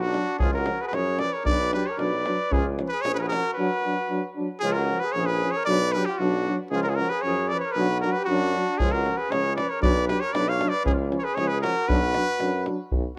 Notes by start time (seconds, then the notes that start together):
Already playing: B1
0.01 D4 F#4
0.12 F#3 D4, davul high
0.38 C#2 F3 C#4 F4 G#4, davul low
0.53 F#4 A#4, davul high
0.65 F3 C#4, davul high
0.81 F#4 G#4 B4
0.87 G#4 B4
0.92 F#2 F3 C#4 G#4 C#5, davul high
1.18 F3 C#4 D5, davul high
1.22 B4
1.33 A#4 C#5
1.45 B1 F#3 D4 D5, davul low
1.49 B4
1.60 davul high
1.73 F#3 D4 G4 B4, davul high
1.86 A#4 C#5
1.98 B1 F#3 D4 D5, davul high
2.03 B4
2.25 F#3 D4, davul high
2.51 C#2 F3 C#4 G#4, davul low
2.57 F4
2.79 F3 C#4, davul high
2.88 B4
2.93 G#4
3.02 A#1 F3 C#4 G#4 C#5, davul high
3.15 G#4 B4
3.19 F#4 A#4 B4
3.25 G#4 A#4
3.31 F3 C#4 F#4, davul high
3.54 D4 B4
3.59 F#3 F#4
3.85 F#3 D4
4.10 F#3 D4
4.36 F#3 D4
4.60 C#2 F3 C#4 G#4
4.65 F4
4.72 A#4
4.77 F#4
4.88 F3 C#4
5.00 G#4 B4
5.12 A#1 F3 C#4 C#5
5.17 G#4
5.26 B4
5.31 G#4
5.41 F3 C#4
5.51 C#5
5.57 A#4
5.65 B1 F#3 D4 D5
5.70 B4
5.92 F#3 D4 G4 B4
6.06 F4 G4
6.18 B1 F#3 D4 F#4
6.46 F#3 D4
6.71 C#2 F3 C#4 F4 G#4
6.83 F#4 A#4
6.89 F4 G#4
6.96 C#4 F#4 A#4
7.00 F3
7.09 G#4 B4
7.22 F#2 C#4 G#4 C#5
7.26 F3
7.48 F3 C#4 D5
7.53 B4
7.60 C#5
7.64 A#4
7.72 B1 B4
7.77 F#3 D4 F#4
8.01 D4 F#4 A#4
8.06 F#3
8.12 B4
8.18 G4
8.25 F#2 D4 F#4
8.29 F#3 D4
8.54 F#3 D4
8.78 C#2 F3 C#4 F4 G#4, davul low
8.92 F#4 A#4, davul high
9.05 F3 C#4, davul high
9.17 G#4 B4
9.30 C#2 F3 C#4 G#4 C#5, davul high
9.56 F3 C#4 B4 D5, davul high
9.69 A#4 C#5
9.82 B1 F#3 D4 B4 D5, davul low
9.96 davul high
10.08 F#3 D4 G4 B4, davul high
10.20 A#4 C#5
10.33 B1 F#3 D4 B4 D5, davul high
10.49 C#5 F5
10.60 F#3 D4, davul high
10.69 B4 D5
10.85 C#2 F3 C#4 G#4, davul low
10.91 F4
10.99 davul high
11.10 F3 C#4, davul high
11.19 A#4 C#5
11.24 G#4 B4
11.35 C#2 F3 C#4 G#4 C#5, davul high
11.48 G#4 B4
11.62 F3 C#4 F#4 A#4, davul high
11.88 B1 F#3 D4 F#4 B4, davul low
12.14 F#3 D4, davul high
12.39 F#2 F#3 D4, davul high
12.66 F#3 D4, davul high
12.91 B1, davul low